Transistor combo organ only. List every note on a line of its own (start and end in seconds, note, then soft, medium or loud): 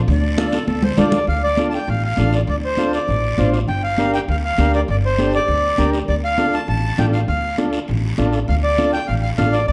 0.37 0.59 D4 medium
0.37 0.59 F4 medium
0.37 0.59 A4 medium
0.98 1.19 D4 medium
0.98 1.19 F4 medium
0.98 1.19 A4 medium
1.58 1.79 D4 medium
1.58 1.79 F4 medium
1.58 1.79 A4 medium
2.18 2.39 D4 medium
2.18 2.39 F4 medium
2.18 2.40 A4 medium
2.78 2.99 D4 medium
2.78 2.99 F4 medium
2.78 3.00 A4 medium
3.38 3.59 D4 medium
3.38 3.59 F4 medium
3.38 3.60 C5 medium
3.98 4.19 D4 medium
3.98 4.19 G4 medium
3.98 4.20 A#4 medium
4.60 4.80 D4 medium
4.60 4.80 G4 medium
4.60 4.80 A#4 medium
5.19 5.40 D4 medium
5.19 5.40 G4 medium
5.19 5.40 A4 medium
5.78 5.99 D4 medium
5.78 5.99 G4 medium
5.78 6.00 A#4 medium
6.38 6.59 D4 medium
6.38 6.59 F4 medium
6.38 6.60 A4 medium
6.98 7.19 D4 medium
6.98 7.20 F4 medium
6.98 7.20 A4 medium
7.58 7.79 D4 medium
7.58 7.79 F4 medium
7.58 7.79 A4 medium
8.18 8.39 D4 medium
8.18 8.39 F4 medium
8.18 8.40 A4 medium
8.78 8.99 D4 medium
8.78 8.99 F4 medium
8.78 9.00 A4 medium
9.38 9.59 D4 medium
9.38 9.60 F4 medium
9.38 9.60 A4 medium